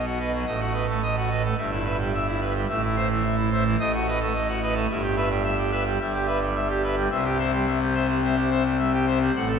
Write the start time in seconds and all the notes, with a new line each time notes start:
Already playing: B1 B2
0.06 F#4
0.19 B4 D#5
0.33 F#3
0.46 A1 A2 D#5
0.60 F#4
0.73 B4 D#5
0.88 A3
1.02 D#5
1.17 F#4
1.30 B4 D#5
1.44 A3
1.57 G1 G2 E5
1.71 E4
1.85 B4 E5
2.00 G3
2.14 E5
2.28 E4
2.41 B4 E5
2.56 G3
2.69 A1 A2 E5
2.84 E4
2.96 C5 E5
3.10 E3
3.23 E5
3.37 E4
3.52 C5 E5
3.65 E3
3.79 A1 A2 D#5
3.94 F#4
4.07 B4 D#5
4.21 A3
4.35 D#5
4.48 F#4
4.62 B4 D#5
4.75 A3
4.89 G1 G2 E5
5.02 G4
5.16 B4 E5
5.30 G3
5.44 E5
5.58 G4
5.71 B4 E5
5.86 G3
6.00 G1 G2 E5
6.13 G4
6.26 B4 E5
6.41 G3
6.55 E5
6.69 G4
6.83 B4 E5
6.96 G3
7.10 C2 C3 E5
7.24 G4
7.39 C5 E5
7.53 G3
7.67 E5
7.81 G4
7.94 C5 E5
8.08 G3
8.23 C4 E5
8.36 G4
8.51 C5 E5
8.65 G3
8.79 E5
8.93 G4
9.06 C5 E5
9.21 G3
9.35 A1 A2 F#5
9.48 A4